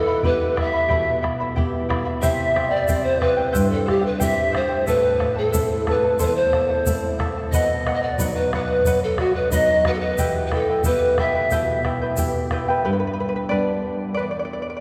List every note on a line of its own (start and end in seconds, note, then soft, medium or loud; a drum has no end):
0.00 0.87 E3 medium
0.00 0.26 A4 medium
0.00 0.28 A4 medium
0.07 0.23 E4 soft
0.07 0.23 E5 soft
0.07 0.23 B5 medium
0.23 0.89 B3 soft
0.23 0.56 E4 medium
0.23 0.89 E4 soft
0.23 0.89 G4 medium
0.23 0.61 B4 medium
0.23 0.64 B4 medium
0.23 0.56 E5 medium
0.23 0.55 G5 medium
0.23 0.56 B5 medium
0.23 bombo low medium
0.56 0.73 E4 medium
0.56 0.73 E5 medium
0.56 1.25 E5 loud
0.56 0.73 G5 medium
0.56 0.72 B5 medium
0.56 bombo rim medium
0.56 bombo low medium
0.62 1.26 E5 medium
0.73 0.88 E4 soft
0.73 0.88 E5 soft
0.73 0.89 B5 soft
0.88 2.19 B2 medium
0.88 1.22 E4 medium
0.88 1.23 G4 medium
0.88 1.22 E5 medium
0.88 1.21 G5 medium
0.88 1.22 B5 medium
0.88 bombo low medium
1.22 1.40 E4 medium
1.22 1.40 E5 medium
1.22 1.39 G5 medium
1.22 1.39 B5 medium
1.22 bombo rim soft
1.22 bombo low soft
1.40 1.55 E4 medium
1.40 1.56 E5 soft
1.40 1.56 B5 medium
1.56 2.21 B3 soft
1.56 1.88 E4 medium
1.56 2.21 E4 soft
1.56 2.22 G4 medium
1.56 1.88 E5 medium
1.56 1.88 G5 medium
1.56 1.89 B5 medium
1.56 bombo low medium
1.89 2.06 E4 medium
1.89 2.05 E5 medium
1.89 2.06 G5 medium
1.89 2.04 B5 medium
1.89 bombo rim medium
1.89 bombo low medium
2.05 2.21 E4 soft
2.05 2.21 E5 soft
2.05 2.22 B5 medium
2.21 3.51 C3 medium
2.21 2.54 E4 medium
2.21 2.55 G4 medium
2.21 2.54 C5 medium
2.21 2.72 E5 loud
2.21 2.54 E5 medium
2.21 2.77 E5 medium
2.21 2.55 G5 medium
2.21 bombo low medium
2.21 shaker medium
2.55 2.71 E4 medium
2.55 2.71 C5 medium
2.55 2.72 E5 medium
2.55 2.70 G5 medium
2.55 bombo rim medium
2.55 bombo low soft
2.70 2.87 E4 soft
2.70 2.88 C5 medium
2.70 3.05 D5 medium
2.70 2.88 G5 medium
2.75 3.09 D5 medium
2.88 3.54 C4 soft
2.88 3.20 E4 medium
2.88 3.54 E4 soft
2.88 3.54 G4 medium
2.88 3.21 C5 medium
2.88 3.19 E5 medium
2.88 3.20 G5 medium
2.88 bombo low medium
2.88 shaker medium
3.04 3.22 C5 medium
3.08 3.24 C5 medium
3.20 3.37 E4 medium
3.20 3.71 B4 medium
3.20 3.75 B4 medium
3.20 3.36 C5 medium
3.20 3.38 E5 medium
3.20 3.36 G5 medium
3.20 bombo rim soft
3.20 bombo low medium
3.37 3.52 E4 soft
3.37 3.52 C5 soft
3.37 3.52 G5 medium
3.52 4.84 G2 medium
3.52 3.85 E4 medium
3.52 3.87 G4 medium
3.52 3.85 C5 medium
3.52 3.85 E5 medium
3.52 3.86 G5 medium
3.52 bombo low medium
3.52 shaker loud
3.70 3.90 A4 medium
3.70 3.91 A4 medium
3.86 4.02 E4 medium
3.86 4.07 G4 medium
3.86 4.08 G4 medium
3.86 4.01 C5 medium
3.86 4.04 E5 medium
3.86 4.00 G5 medium
3.86 bombo rim soft
3.86 bombo low soft
4.01 4.17 E4 soft
4.01 4.18 C5 soft
4.01 4.18 G5 soft
4.05 4.22 B4 medium
4.05 4.25 B4 medium
4.18 4.86 C4 medium
4.18 4.51 E4 medium
4.18 4.51 C5 medium
4.18 4.50 E5 medium
4.18 4.54 E5 medium
4.18 4.51 G5 medium
4.18 bombo low medium
4.18 shaker loud
4.22 4.86 E4 soft
4.22 4.86 G4 medium
4.22 4.56 E5 medium
4.51 4.69 E4 medium
4.51 4.68 C5 medium
4.51 4.70 E5 medium
4.51 4.67 G5 medium
4.51 bombo rim medium
4.51 bombo low medium
4.56 4.89 C5 medium
4.56 4.90 C5 medium
4.69 4.86 E4 soft
4.69 4.87 C5 soft
4.69 4.87 G5 soft
4.87 6.16 A2 medium
4.87 5.18 E4 medium
4.87 5.18 A4 medium
4.87 5.37 B4 loud
4.87 5.38 B4 medium
4.87 5.17 E5 medium
4.87 5.19 A5 medium
4.87 bombo low medium
4.87 shaker medium
5.18 5.36 E4 medium
5.18 5.35 A4 medium
5.18 5.36 E5 medium
5.18 5.34 A5 medium
5.18 bombo rim soft
5.18 bombo low soft
5.36 5.52 E4 soft
5.36 5.52 A4 soft
5.36 5.84 A4 medium
5.36 5.53 A5 medium
5.52 6.18 A3 soft
5.52 6.18 C4 soft
5.52 5.86 E4 medium
5.52 6.19 E4 medium
5.52 5.87 A4 medium
5.52 5.86 E5 medium
5.52 5.87 A5 medium
5.52 bombo low medium
5.52 shaker loud
5.87 6.04 E4 medium
5.87 6.03 A4 medium
5.87 6.23 B4 medium
5.87 6.25 B4 medium
5.87 6.04 E5 medium
5.87 6.02 A5 medium
5.87 bombo rim medium
5.87 bombo low medium
6.03 6.18 E4 soft
6.03 6.19 A4 soft
6.03 6.19 A5 medium
6.19 7.49 E2 medium
6.19 6.52 E4 medium
6.19 6.53 A4 medium
6.19 6.53 C5 medium
6.19 6.28 C5 medium
6.19 6.29 C5 medium
6.19 6.52 E5 medium
6.19 6.53 A5 medium
6.19 bombo low medium
6.19 shaker medium
6.26 6.37 B4 medium
6.26 6.38 B4 medium
6.35 7.20 C5 medium
6.35 7.21 C5 medium
6.53 6.69 E4 medium
6.53 6.68 A4 medium
6.53 6.70 E5 medium
6.53 6.68 A5 medium
6.53 bombo rim soft
6.53 bombo low soft
6.69 6.85 E4 soft
6.69 6.86 A4 soft
6.69 6.86 A5 medium
6.86 7.51 A3 medium
6.86 7.52 C4 soft
6.86 7.19 E4 medium
6.86 7.52 E4 soft
6.86 7.19 A4 medium
6.86 7.18 E5 medium
6.86 7.20 A5 medium
6.86 bombo low medium
6.86 shaker medium
7.19 7.36 E4 medium
7.19 7.36 A4 medium
7.19 7.36 E5 medium
7.19 7.37 A5 medium
7.19 bombo rim medium
7.19 bombo low medium
7.38 7.54 E4 soft
7.38 7.53 A4 soft
7.38 7.54 A5 medium
7.52 8.81 B2 medium
7.52 7.85 B4 medium
7.52 7.94 D#5 medium
7.52 7.97 D#5 medium
7.52 7.86 D#5 medium
7.52 7.87 F#5 medium
7.52 bombo low medium
7.52 shaker medium
7.87 8.03 B4 medium
7.87 8.03 D#5 medium
7.87 8.02 F#5 medium
7.87 bombo rim medium
7.87 bombo low soft
7.94 8.04 D#5 medium
7.94 8.05 D#5 medium
8.03 8.36 D5 medium
8.03 8.39 D5 medium
8.03 8.19 D#5 soft
8.03 8.20 F#5 medium
8.18 8.83 F#3 medium
8.18 8.83 B3 soft
8.18 8.83 D#4 medium
8.18 8.52 B4 medium
8.18 8.53 D#5 medium
8.18 8.53 F#5 medium
8.18 bombo low medium
8.18 shaker medium
8.35 8.52 B4 medium
8.35 8.53 B4 medium
8.53 8.99 B4 medium
8.53 8.70 B4 medium
8.53 9.00 B4 medium
8.53 8.69 D#5 medium
8.53 8.68 F#5 medium
8.53 bombo rim medium
8.53 bombo low medium
8.69 8.86 D#5 soft
8.69 8.85 F#5 soft
8.85 10.14 F#2 medium
8.85 9.18 B4 medium
8.85 9.19 D#5 medium
8.85 9.20 F#5 medium
8.85 bombo low medium
8.85 shaker medium
9.04 9.21 A4 medium
9.18 9.34 F#4 medium
9.18 9.35 F#4 medium
9.18 9.36 B4 medium
9.18 9.36 D#5 medium
9.18 9.35 F#5 medium
9.18 bombo rim medium
9.18 bombo low medium
9.35 9.52 B4 medium
9.35 9.53 B4 medium
9.35 9.52 D#5 soft
9.35 9.52 F#5 medium
9.51 10.16 F#3 medium
9.51 10.16 B3 soft
9.51 10.16 D#4 medium
9.51 9.85 B4 medium
9.51 9.89 D#5 medium
9.51 9.86 D#5 medium
9.51 9.86 F#5 medium
9.51 bombo low medium
9.51 shaker loud
9.85 10.02 B4 medium
9.85 9.95 B4 medium
9.85 9.96 B4 medium
9.85 10.02 D#5 medium
9.85 10.00 F#5 medium
9.85 bombo rim medium
9.85 bombo low medium
9.93 10.02 A4 medium
9.93 10.01 A4 medium
10.00 10.47 B4 loud
10.00 10.46 B4 medium
10.00 10.19 D#5 soft
10.00 10.18 F#5 medium
10.18 11.47 E3 medium
10.18 10.51 E4 medium
10.18 10.51 G4 medium
10.18 10.52 B4 medium
10.18 10.51 E5 medium
10.18 10.52 G5 medium
10.18 bombo low medium
10.18 shaker medium
10.46 10.55 B4 medium
10.46 10.56 B4 medium
10.52 10.69 E4 medium
10.52 10.86 A4 medium
10.52 10.69 B4 medium
10.52 10.68 E5 medium
10.52 10.68 G5 medium
10.52 bombo rim medium
10.52 bombo low soft
10.70 10.84 E4 soft
10.70 10.85 B4 soft
10.70 10.85 G5 medium
10.84 11.49 B3 soft
10.84 11.18 E4 medium
10.84 11.50 E4 soft
10.84 11.50 G4 medium
10.84 11.18 B4 medium
10.84 11.22 B4 medium
10.84 11.21 B4 medium
10.84 11.17 E5 medium
10.84 11.18 G5 medium
10.84 bombo low medium
10.84 shaker medium
11.18 11.35 E4 medium
11.18 11.35 B4 medium
11.18 11.35 E5 medium
11.18 11.85 E5 medium
11.18 11.34 G5 medium
11.18 bombo rim medium
11.18 bombo low medium
11.35 11.51 E4 soft
11.35 11.51 B4 soft
11.35 11.51 G5 soft
11.51 12.81 B2 medium
11.51 11.84 E4 medium
11.51 11.85 G4 medium
11.51 11.84 B4 medium
11.51 11.83 E5 medium
11.51 11.84 G5 medium
11.51 bombo low medium
11.51 shaker medium
11.84 12.01 E4 medium
11.84 12.01 B4 medium
11.84 12.01 E5 medium
11.84 12.00 G5 medium
11.84 bombo rim soft
11.84 bombo low soft
12.02 12.17 E4 soft
12.02 12.17 B4 medium
12.02 12.18 G5 medium
12.17 12.82 B3 soft
12.17 12.51 E4 medium
12.17 12.82 E4 soft
12.17 12.83 G4 medium
12.17 12.51 B4 medium
12.17 12.50 E5 medium
12.17 12.51 G5 medium
12.17 bombo low medium
12.17 shaker medium
12.51 12.68 E4 medium
12.51 12.68 B4 medium
12.51 12.68 E5 medium
12.51 12.67 G5 medium
12.51 bombo rim medium
12.51 bombo low medium
12.68 12.85 E4 soft
12.68 12.84 B4 medium
12.68 12.85 G5 medium
12.85 14.14 G2 medium
12.85 12.92 G4 medium
12.85 12.91 B4 medium
12.93 12.99 B4 medium
13.00 13.06 B4 medium
13.07 13.12 B4 medium
13.13 13.19 B4 medium
13.20 13.28 B4 medium
13.29 13.35 B4 medium
13.36 13.44 B4 medium
13.49 14.16 G3 soft
13.49 14.16 B3 soft
13.49 14.14 B4 medium
13.49 14.13 D5 medium
13.53 14.17 D4 soft
14.14 14.24 B4 medium
14.14 14.21 D5 medium
14.19 14.80 E2 medium
14.19 14.30 D5 soft
14.31 14.38 D5 medium
14.39 14.44 D5 medium
14.45 14.52 D5 medium
14.53 14.61 D5 soft
14.62 14.69 D5 medium
14.70 14.75 D5 medium
14.77 14.80 D5 medium